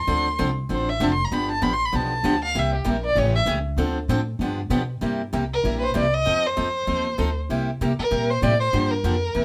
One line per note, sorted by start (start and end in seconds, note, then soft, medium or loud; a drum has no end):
0.00 0.41 C6 loud
0.07 0.38 D2 medium
0.07 0.27 D3 medium
0.07 0.27 F3 medium
0.07 0.27 C4 medium
0.07 0.27 D4 medium
0.07 0.27 A4 medium
0.39 0.69 C2 medium
0.39 0.49 D3 medium
0.39 0.49 F3 medium
0.39 0.49 C4 medium
0.39 0.49 D4 medium
0.39 0.49 A4 medium
0.69 0.99 A1 medium
0.69 0.89 D3 medium
0.69 0.89 F3 medium
0.69 0.89 C4 medium
0.69 0.89 D4 medium
0.69 0.89 A4 medium
0.74 0.91 C5 medium
0.89 1.05 E5 medium
1.00 1.30 F1 medium
1.00 1.11 D3 medium
1.00 1.11 F3 medium
1.00 1.11 C4 medium
1.00 1.11 D4 medium
1.00 1.11 A4 medium
1.00 1.14 A5 medium
1.12 1.26 C6 medium
1.25 1.35 A#5 medium
1.31 1.61 G1 medium
1.31 1.51 D3 medium
1.31 1.51 F3 medium
1.31 1.51 B3 medium
1.31 1.51 D4 medium
1.31 1.51 G4 medium
1.31 1.50 B5 medium
1.51 1.65 A5 medium
1.62 1.92 A1 medium
1.62 1.72 D3 medium
1.62 1.72 F3 medium
1.62 1.73 B3 medium
1.62 1.73 D4 medium
1.62 1.73 G4 medium
1.62 1.74 B5 medium
1.73 1.87 C6 loud
1.85 1.97 B5 medium
1.92 2.23 B1 medium
1.92 2.12 D3 medium
1.92 2.12 F3 medium
1.92 2.12 B3 medium
1.92 2.12 D4 medium
1.92 2.12 G4 medium
1.92 2.43 A5 medium
2.23 2.54 D2 medium
2.23 2.34 D3 medium
2.23 2.35 F3 medium
2.23 2.35 B3 medium
2.23 2.35 D4 medium
2.23 2.35 G4 loud
2.44 2.60 F5 medium
2.55 2.85 C2 medium
2.55 2.74 C3 medium
2.55 2.74 G3 medium
2.55 2.74 A#3 medium
2.55 2.74 E4 medium
2.55 2.75 G4 medium
2.55 2.74 E5 medium
2.75 2.91 G4 soft
2.84 3.15 A#1 medium
2.84 2.95 C3 medium
2.84 2.96 G3 medium
2.84 2.96 A#3 medium
2.84 2.96 E4 medium
2.84 2.96 G4 medium
2.90 3.05 A#4 medium
3.06 3.20 D5 loud
3.15 3.45 A1 medium
3.15 3.35 C#3 medium
3.15 3.36 E3 medium
3.15 3.36 A3 medium
3.15 3.36 C#4 medium
3.15 3.36 G4 medium
3.15 3.35 C#5 medium
3.35 3.43 E5 loud
3.46 3.76 C#2 medium
3.46 3.57 C#3 medium
3.46 3.57 E3 medium
3.46 3.58 A3 loud
3.46 3.58 C#4 medium
3.46 3.58 G4 medium
3.76 4.07 D2 medium
3.76 3.97 D3 medium
3.76 3.97 F3 medium
3.76 3.97 C4 medium
3.76 3.97 D4 medium
3.76 3.98 A4 medium
4.08 4.39 A2 medium
4.08 4.20 D3 medium
4.08 4.20 F3 medium
4.08 4.20 C4 medium
4.08 4.20 D4 medium
4.08 4.20 A4 loud
4.39 4.69 G2 medium
4.39 4.60 D3 soft
4.39 4.60 F3 medium
4.39 4.60 B3 medium
4.39 4.60 D4 medium
4.39 4.60 G4 medium
4.70 5.00 B2 medium
4.70 4.81 D3 medium
4.70 4.81 F3 medium
4.70 4.81 B3 medium
4.70 4.81 D4 loud
4.70 4.81 G4 loud
5.01 5.32 G2 medium
5.01 5.21 C3 medium
5.01 5.21 G3 medium
5.01 5.21 A#3 medium
5.01 5.21 E4 medium
5.01 5.21 G4 medium
5.33 5.63 C2 medium
5.33 5.43 C3 medium
5.33 5.43 G3 medium
5.33 5.43 A#3 medium
5.33 5.43 E4 medium
5.33 5.43 G4 medium
5.54 5.77 A#4 medium
5.64 5.94 A#1 medium
5.64 5.83 C3 medium
5.64 5.84 G3 medium
5.64 5.83 A#3 medium
5.64 5.83 E4 medium
5.64 5.84 G4 medium
5.80 5.85 B4 medium
5.80 5.95 C5 medium
5.94 6.25 C2 medium
5.94 6.05 C3 medium
5.94 6.05 G3 medium
5.94 6.05 A#3 medium
5.94 6.05 E4 medium
5.94 6.05 G4 loud
5.98 6.16 D5 medium
6.15 6.48 D#5 loud
6.25 6.56 F2 medium
6.25 6.45 F3 medium
6.25 6.45 C4 medium
6.25 6.45 D#4 medium
6.25 6.45 A4 medium
6.46 7.38 C5 medium
6.57 6.87 F2 medium
6.57 6.67 F3 medium
6.57 6.67 C4 medium
6.57 6.67 D#4 medium
6.57 6.67 A4 medium
6.87 7.17 D#2 medium
6.87 7.07 F3 medium
6.87 7.06 C4 medium
6.87 7.07 D#4 medium
6.87 7.07 A4 medium
7.18 7.48 D2 medium
7.18 7.29 F3 medium
7.18 7.28 C4 medium
7.18 7.29 D#4 medium
7.18 7.29 A4 medium
7.49 7.79 C2 medium
7.49 7.69 C3 medium
7.49 7.69 G3 medium
7.49 7.69 A#3 medium
7.49 7.69 E4 medium
7.49 7.69 G4 medium
7.81 7.97 C3 medium
7.81 7.91 C3 medium
7.81 7.91 G3 medium
7.81 7.91 A#3 medium
7.81 7.91 E4 medium
7.81 7.92 G4 medium
7.99 8.32 A#4 medium
7.99 muted upright bass stroke soft
8.11 8.41 A#2 medium
8.11 8.30 C3 medium
8.11 8.30 G3 medium
8.11 8.30 A#3 medium
8.11 8.31 E4 medium
8.11 8.31 G4 medium
8.30 8.45 C5 medium
8.42 8.72 A2 medium
8.42 8.53 C3 medium
8.42 8.53 G3 medium
8.42 8.53 A#3 medium
8.42 8.53 E4 medium
8.42 8.53 G4 loud
8.42 8.60 D5 loud
8.61 8.93 C5 loud
8.73 9.03 G2 medium
8.73 8.92 D3 medium
8.73 8.92 F3 medium
8.73 8.93 A#3 medium
8.73 8.92 D4 medium
8.73 8.93 G4 medium
8.91 9.45 A#4 medium
9.04 9.34 F2 medium
9.04 9.14 D3 medium
9.04 9.15 F3 medium
9.04 9.15 A#3 medium
9.04 9.15 D4 medium
9.04 9.15 G4 medium
9.35 9.45 E2 medium
9.35 9.45 C3 medium
9.35 9.45 G3 medium
9.35 9.45 A#3 medium
9.35 9.45 E4 medium
9.35 9.45 G4 medium